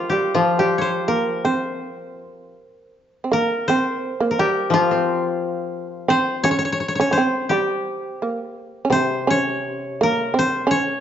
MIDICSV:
0, 0, Header, 1, 4, 480
1, 0, Start_track
1, 0, Tempo, 731707
1, 237, Time_signature, 2, 2, 24, 8
1, 2635, Tempo, 692841
1, 5035, Tempo, 720288
1, 6475, Tempo, 694444
1, 7415, End_track
2, 0, Start_track
2, 0, Title_t, "Koto"
2, 0, Program_c, 0, 107
2, 0, Note_on_c, 0, 65, 60
2, 0, Note_on_c, 0, 70, 67
2, 0, Note_on_c, 0, 72, 67
2, 62, Note_on_c, 0, 67, 67
2, 223, Note_off_c, 0, 65, 0
2, 226, Note_on_c, 0, 65, 69
2, 385, Note_off_c, 0, 67, 0
2, 387, Note_on_c, 0, 67, 68
2, 512, Note_on_c, 0, 73, 51
2, 531, Note_off_c, 0, 72, 0
2, 534, Note_on_c, 0, 72, 71
2, 573, Note_off_c, 0, 73, 0
2, 706, Note_off_c, 0, 70, 0
2, 708, Note_on_c, 0, 70, 67
2, 948, Note_off_c, 0, 72, 0
2, 950, Note_on_c, 0, 72, 63
2, 1660, Note_off_c, 0, 65, 0
2, 1726, Note_off_c, 0, 67, 0
2, 1914, Note_off_c, 0, 70, 0
2, 2075, Note_off_c, 0, 72, 0
2, 2185, Note_on_c, 0, 70, 80
2, 2413, Note_on_c, 0, 72, 94
2, 2834, Note_off_c, 0, 70, 0
2, 2837, Note_on_c, 0, 70, 57
2, 2896, Note_on_c, 0, 67, 82
2, 3133, Note_on_c, 0, 65, 81
2, 3589, Note_off_c, 0, 72, 0
2, 4078, Note_on_c, 0, 72, 96
2, 4111, Note_off_c, 0, 70, 0
2, 4309, Note_off_c, 0, 67, 0
2, 4310, Note_on_c, 0, 73, 112
2, 4352, Note_off_c, 0, 72, 0
2, 4359, Note_off_c, 0, 73, 0
2, 4362, Note_on_c, 0, 73, 70
2, 4412, Note_off_c, 0, 73, 0
2, 4415, Note_on_c, 0, 73, 79
2, 4456, Note_off_c, 0, 73, 0
2, 4459, Note_on_c, 0, 73, 65
2, 4508, Note_off_c, 0, 73, 0
2, 4511, Note_on_c, 0, 73, 73
2, 4561, Note_off_c, 0, 73, 0
2, 4564, Note_on_c, 0, 73, 59
2, 4618, Note_off_c, 0, 73, 0
2, 4621, Note_on_c, 0, 73, 72
2, 4648, Note_off_c, 0, 65, 0
2, 4667, Note_off_c, 0, 73, 0
2, 4670, Note_on_c, 0, 73, 65
2, 4702, Note_off_c, 0, 73, 0
2, 4705, Note_on_c, 0, 73, 74
2, 4789, Note_on_c, 0, 72, 88
2, 4830, Note_off_c, 0, 73, 0
2, 5043, Note_on_c, 0, 67, 72
2, 5941, Note_off_c, 0, 72, 0
2, 5996, Note_on_c, 0, 72, 87
2, 6250, Note_on_c, 0, 73, 99
2, 6290, Note_off_c, 0, 72, 0
2, 6402, Note_off_c, 0, 67, 0
2, 6745, Note_on_c, 0, 70, 82
2, 6990, Note_on_c, 0, 72, 94
2, 7031, Note_off_c, 0, 73, 0
2, 7212, Note_on_c, 0, 73, 96
2, 7253, Note_off_c, 0, 72, 0
2, 7415, Note_off_c, 0, 70, 0
2, 7415, Note_off_c, 0, 73, 0
2, 7415, End_track
3, 0, Start_track
3, 0, Title_t, "Shamisen"
3, 0, Program_c, 1, 106
3, 0, Note_on_c, 1, 53, 55
3, 70, Note_off_c, 1, 53, 0
3, 78, Note_on_c, 1, 55, 55
3, 226, Note_off_c, 1, 55, 0
3, 232, Note_on_c, 1, 53, 63
3, 383, Note_off_c, 1, 53, 0
3, 387, Note_on_c, 1, 55, 56
3, 687, Note_off_c, 1, 55, 0
3, 708, Note_on_c, 1, 58, 58
3, 933, Note_off_c, 1, 58, 0
3, 949, Note_on_c, 1, 60, 54
3, 1653, Note_off_c, 1, 60, 0
3, 2126, Note_on_c, 1, 60, 41
3, 2170, Note_off_c, 1, 60, 0
3, 2175, Note_on_c, 1, 58, 71
3, 2392, Note_off_c, 1, 58, 0
3, 2424, Note_on_c, 1, 60, 75
3, 2742, Note_off_c, 1, 60, 0
3, 2765, Note_on_c, 1, 58, 76
3, 2874, Note_off_c, 1, 58, 0
3, 2896, Note_on_c, 1, 55, 73
3, 3113, Note_off_c, 1, 55, 0
3, 3135, Note_on_c, 1, 53, 71
3, 3818, Note_off_c, 1, 53, 0
3, 4067, Note_on_c, 1, 60, 97
3, 4296, Note_off_c, 1, 60, 0
3, 4320, Note_on_c, 1, 61, 86
3, 4652, Note_off_c, 1, 61, 0
3, 4699, Note_on_c, 1, 61, 80
3, 4756, Note_off_c, 1, 61, 0
3, 4779, Note_on_c, 1, 61, 57
3, 4811, Note_off_c, 1, 61, 0
3, 4824, Note_on_c, 1, 60, 70
3, 5034, Note_off_c, 1, 60, 0
3, 5054, Note_on_c, 1, 55, 69
3, 5487, Note_off_c, 1, 55, 0
3, 5528, Note_on_c, 1, 58, 55
3, 5740, Note_off_c, 1, 58, 0
3, 5946, Note_on_c, 1, 61, 54
3, 5980, Note_off_c, 1, 61, 0
3, 5983, Note_on_c, 1, 60, 79
3, 6213, Note_off_c, 1, 60, 0
3, 6229, Note_on_c, 1, 61, 74
3, 6693, Note_off_c, 1, 61, 0
3, 6729, Note_on_c, 1, 58, 70
3, 6948, Note_off_c, 1, 58, 0
3, 6957, Note_on_c, 1, 60, 77
3, 7178, Note_off_c, 1, 60, 0
3, 7184, Note_on_c, 1, 61, 80
3, 7415, Note_off_c, 1, 61, 0
3, 7415, End_track
4, 0, Start_track
4, 0, Title_t, "Koto"
4, 0, Program_c, 2, 107
4, 227, Note_on_c, 2, 53, 45
4, 1677, Note_off_c, 2, 53, 0
4, 3108, Note_on_c, 2, 53, 66
4, 3254, Note_on_c, 2, 60, 47
4, 4206, Note_off_c, 2, 60, 0
4, 4552, Note_off_c, 2, 53, 0
4, 5979, Note_on_c, 2, 48, 53
4, 7415, Note_off_c, 2, 48, 0
4, 7415, End_track
0, 0, End_of_file